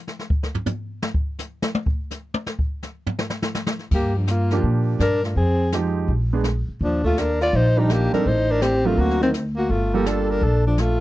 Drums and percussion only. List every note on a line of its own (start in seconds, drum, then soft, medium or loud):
0.07 snare soft
0.19 snare soft
0.30 kick medium
0.43 snare medium
0.55 floor tom medium
0.66 floor tom loud
0.66 hi-hat pedal medium
1.02 snare loud
1.14 kick medium
1.39 snare soft
1.39 hi-hat pedal medium
1.62 snare loud
1.75 high tom loud
1.86 kick medium
2.11 snare soft
2.11 hi-hat pedal medium
2.34 high tom loud
2.46 snare loud
2.59 kick medium
2.83 snare medium
2.83 hi-hat pedal medium
3.07 floor tom loud
3.19 snare loud
3.30 snare loud
3.42 snare loud
3.55 snare loud
3.55 hi-hat pedal medium
3.67 snare medium
3.79 snare soft
3.91 brush sweep soft
3.91 kick medium
3.91 crash medium
4.27 snare medium
4.27 hi-hat pedal medium
4.50 snare soft
4.63 brush sweep soft
4.63 kick soft
5.00 snare medium
5.00 hi-hat pedal medium
5.24 snare soft
5.36 brush sweep soft
5.36 kick soft
5.72 snare medium
5.72 hi-hat pedal medium
6.08 brush sweep medium
6.08 kick soft
6.44 snare medium
6.44 hi-hat pedal medium
6.81 brush sweep medium
6.81 kick soft
7.04 kick soft
7.18 snare medium
7.18 hi-hat pedal medium
7.41 snare soft
7.53 brush sweep soft
7.53 kick soft
7.90 snare medium
7.90 hi-hat pedal medium
8.13 snare soft
8.26 brush sweep soft
8.26 kick soft
8.62 snare medium
8.62 hi-hat pedal medium
8.98 brush sweep soft
8.98 kick soft
9.10 snare soft
9.22 snare soft
9.34 snare medium
9.34 hi-hat pedal medium
9.70 brush sweep soft
9.70 kick soft
10.06 snare medium
10.06 hi-hat pedal medium
10.42 brush sweep medium
10.42 kick soft
10.78 snare medium
10.78 hi-hat pedal medium